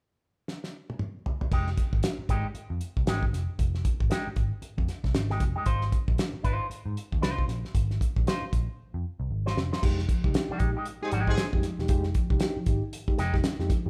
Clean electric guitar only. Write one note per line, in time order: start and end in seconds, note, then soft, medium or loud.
1.52 1.68 G#3 medium
1.52 1.69 D#4 medium
1.52 1.69 G4 medium
2.29 2.46 G#3 medium
2.29 2.46 D#4 medium
2.29 2.47 G4 loud
3.07 3.24 G#3 medium
3.07 3.24 D#4 medium
3.07 3.24 G4 medium
4.10 4.27 G#3 medium
4.10 4.28 D#4 medium
4.10 4.28 G4 medium
5.30 5.43 G#3 medium
5.30 5.43 D#4 medium
5.30 5.43 G4 medium
5.56 5.66 G#3 medium
5.56 5.64 D#4 medium
5.56 5.65 G4 medium
5.66 5.83 D#4 medium
5.66 5.83 F4 medium
5.66 5.83 C5 medium
6.43 6.65 D#4 medium
6.43 6.66 F4 medium
6.43 6.66 C5 loud
7.21 7.44 D#4 medium
7.21 7.44 F4 medium
7.21 7.44 C5 medium
8.27 8.44 D#4 medium
8.27 8.44 F4 medium
8.27 8.44 C5 medium
9.46 9.59 D#4 medium
9.46 9.59 F4 medium
9.46 9.58 C5 medium
9.73 9.82 D#4 medium
9.73 9.82 F4 medium
9.73 9.81 C5 medium
10.50 10.70 G#3 medium
10.50 10.69 D#4 medium
10.50 10.69 G4 medium
10.77 10.86 G#3 soft
10.77 10.86 D#4 medium
10.77 10.85 G4 medium
11.12 11.33 G#3 medium
11.12 11.33 D#4 loud
11.12 11.34 G4 loud
13.18 13.35 G#3 medium
13.18 13.35 D#4 medium
13.18 13.35 G4 loud